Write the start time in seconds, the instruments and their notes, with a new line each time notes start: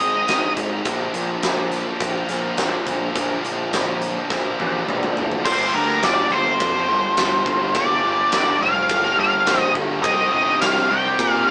Already playing: distorted electric guitar G#2 D#3 G#3 C4 D#4 G#4, lead electric guitar D#5
0.00 picked electric bass G#1, distorted electric guitar D#3 G#3 C4 D#4, closed hi-hat
0.14 distorted electric guitar G#3 C4 D#4
0.28 picked electric bass G#1, distorted electric guitar G#2 D#3 G#3 C4 D#4, snare, closed hi-hat
0.57 picked electric bass G#1, distorted electric guitar D#3 G#3 C4 D#4, kick, closed hi-hat
0.71 distorted electric guitar G#3 C4 D#4
0.85 picked electric bass A#1, distorted electric guitar A#2 D3 F3 A#3 D4 A#4, kick, closed hi-hat
1.00 distorted electric guitar F3 A#3 D4
1.14 picked electric bass A#1, distorted electric guitar D3 F3 A#3 D4, closed hi-hat
1.29 distorted electric guitar F3 A#3 D4
1.43 picked electric bass A#1, distorted electric guitar A#2 D3 F3 A#3 D4, snare, closed hi-hat
1.72 snare, closed hi-hat
1.86 distorted electric guitar F3 A#3 D4
2.00 picked electric bass A#1, distorted electric guitar A#2 D3 F3 A#3 D4 A#4, kick, closed hi-hat
2.15 distorted electric guitar F3 A#3 D4
2.29 picked electric bass A#1, distorted electric guitar D3 F3 A#3 D4, snare, closed hi-hat
2.43 distorted electric guitar F3 A#3 D4
2.57 picked electric bass A#1, distorted electric guitar A#2 D3 F3 A#3 D4, snare, closed hi-hat
2.86 picked electric bass A#1, distorted electric guitar D3 F3 A#3 D4, kick, closed hi-hat
3.00 distorted electric guitar F3 A#3 D4
3.14 picked electric bass A#1, distorted electric guitar A#2 D3 F3 A#3 D4 A#4, kick, closed hi-hat
3.29 distorted electric guitar F3 A#3 D4
3.43 picked electric bass A#1, distorted electric guitar D3 F3 A#3 D4, closed hi-hat
3.58 distorted electric guitar F3 A#3 D4
3.72 picked electric bass A#1, distorted electric guitar A#2 D3 F3 A#3 D4, snare, closed hi-hat
4.02 closed hi-hat
4.15 distorted electric guitar F3 A#3 D4
4.30 picked electric bass A#1, distorted electric guitar A#2 D3 F3 A#3 D4 A#4, kick, snare
4.44 distorted electric guitar F3 A#3 D4
4.59 picked electric bass A#1, distorted electric guitar D3 F3 A#3 D4, high tom
4.73 distorted electric guitar F3 A#3 D4
4.87 picked electric bass A#1, distorted electric guitar A#2 D3 F3 A#3 D4, mid tom
5.03 mid tom
5.17 picked electric bass F#1, distorted electric guitar D3 F3 A#3 D4, floor tom
5.31 distorted electric guitar F3 A#3 D4, floor tom
5.45 picked electric bass G1, distorted electric guitar G2 D3 G3 A#3 D4 G4, lead electric guitar C5, kick, crash
5.75 picked electric bass D2, distorted electric guitar D3 G3 A#3 D4, lead electric guitar A#4
5.88 distorted electric guitar G3 A#3 D4
6.03 picked electric bass G1, distorted electric guitar G2 D3 G3 A#3 D4, lead electric guitar D5, snare, ride bell
6.31 picked electric bass G1, distorted electric guitar G2 D3 G3 A#3 D4 G4, lead electric guitar C5
6.46 muted distorted electric guitar stroke
6.60 picked electric bass F2, kick, ride bell
6.74 distorted electric guitar G3 A#3 D4
6.88 picked electric bass G1, distorted electric guitar D3 G3 A#3 D4
7.03 muted distorted electric guitar stroke
7.16 picked electric bass G1, distorted electric guitar G2 D3 G3 A#3 D4, snare, ride bell
7.46 picked electric bass G1, kick
7.59 distorted electric guitar G3 A#3 D4
7.74 picked electric bass G1, distorted electric guitar G2 D3 G3 A#3 D4 G4, lead electric guitar D5, kick, ride bell
8.03 picked electric bass G1, distorted electric guitar D3 G3 A#3 D4
8.17 distorted electric guitar G3 A#3 D4
8.31 picked electric bass G1, distorted electric guitar G2 D3 G3 A#3 D4, lead electric guitar D5, snare, ride bell
8.60 picked electric bass F1, distorted electric guitar G2 D3 G3 A#3 D4 G4, lead electric guitar F5
8.74 muted distorted electric guitar stroke
8.89 picked electric bass G1, kick, ride bell
9.03 distorted electric guitar G3 A#3 D4
9.17 picked electric bass G1, distorted electric guitar D3 G3 A#3 D4, lead electric guitar F5
9.32 muted distorted electric guitar stroke
9.45 picked electric bass A#1, distorted electric guitar G2 D3 G3 A#3 D4, snare, ride bell
9.61 lead electric guitar D#5
9.75 picked electric bass G1, kick
9.89 distorted electric guitar G3 A#3 D4
10.03 picked electric bass C2, distorted electric guitar C3 G3 C4 D#4 G4, lead electric guitar D#5, kick, ride bell
10.32 picked electric bass G1, distorted electric guitar C3 G3 C4 D#4, lead electric guitar D#5
10.46 distorted electric guitar G3 C4 D#4
10.60 picked electric bass C2, distorted electric guitar C3 G3 C4 D#4, lead electric guitar F5, snare, ride bell
10.77 snare
10.90 picked electric bass C2, distorted electric guitar C3 G3 C4 D#4 G4, lead electric guitar G5
11.05 muted distorted electric guitar stroke
11.19 picked electric bass A#2, kick, ride bell
11.32 distorted electric guitar G3 C4 D#4, lead electric guitar F5
11.46 picked electric bass C2, distorted electric guitar C3 G3, lead electric guitar F5